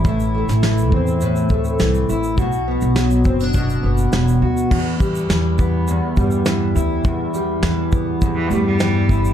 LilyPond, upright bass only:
\new Staff \with { instrumentName = "Upright bass" } { \clef bass \time 4/4 \key e \minor \tempo 4 = 103 a,,8. a,,8. e,4 d,8 c,8 a,,8 | b,,8. b,,8. fis,,4 fis,,8 e,,8 d,8 | e,4 e,4~ e,16 r16 g,4 d,8 | e,4 e,4~ e,16 r16 g,4 g,,8 | }